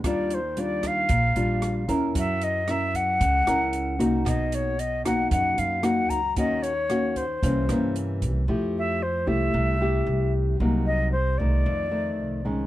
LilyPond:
<<
  \new Staff \with { instrumentName = "Flute" } { \time 4/4 \key ees \lydian \tempo 4 = 114 d''8 c''8 d''8 f''2 r8 | fes''8 ees''8 fes''8 ges''2 r8 | dis''8 des''8 dis''8 fis''8 fis''8 f''8 fis''8 ais''8 | ees''8 des''4 c''4. r4 |
\key f \major r8 e''8 c''8 e''2 r8 | r8 ees''8 c''8 d''2 r8 | }
  \new Staff \with { instrumentName = "Nylon-string guitar" } { \time 4/4 \key ees \lydian << { <g d' f'>8 r8 <g d' f'>4 r8 <g d' f'>4 <des' e' bes'>8~ | <des' e' bes'>4 <des' fes' bes'>4 r8 <des' fes' bes'>4 <bes ees' ges'>8~ | <bes ees' ges'>4 r8 <ais dis' fis'>4. <ais dis' fis'>8 r8 | <bes des' ges'>8 r8 <bes des' ges'>8 r8 <e bes des'>8 <e bes des'>4. |
\key f \major <a e' g'>4 r8 <a e' g'>4 <a e' g'>4. | <ges bes ees'>4 r8 <ees a>4 <ees a>4 <ees aes des'>8 | } \\ { ees2 bes,2 | ges2 des2 | b,2 fis,2 | ees2 c2 |
f2 c2 | c2 f,2 | } >> }
  \new Staff \with { instrumentName = "Upright bass" } { \clef bass \time 4/4 \key ees \lydian ees,2 bes,,8 bes,,4 ees,8 | ges,2 des,8 des,4 c,8 | b,,2 fis,8 fis,4 des,8 | ees,2 c,8 g,4 c,8 |
\key f \major f,4. c,8 c,4 c,4 | c,4. c,8 f,4 c,4 | }
  \new DrumStaff \with { instrumentName = "Drums" } \drummode { \time 4/4 <hh bd ss>8 hh8 hh8 <hh bd ss>8 <hh bd>8 hh8 <hh ss>8 <hh bd>8 | <hh bd>8 hh8 <hh ss>8 <hh bd>8 <hh bd>8 <hh ss>8 hh8 <hh bd>8 | <hh bd ss>8 hh8 hh8 <hh bd ss>8 <hh bd>8 hh8 <hh ss>8 <hh bd>8 | <hh bd>8 hh8 <hh ss>8 <hh bd>8 <hh bd>8 <hh ss>8 hh8 <hh bd>8 |
r4 r4 r4 r4 | r4 r4 r4 r4 | }
>>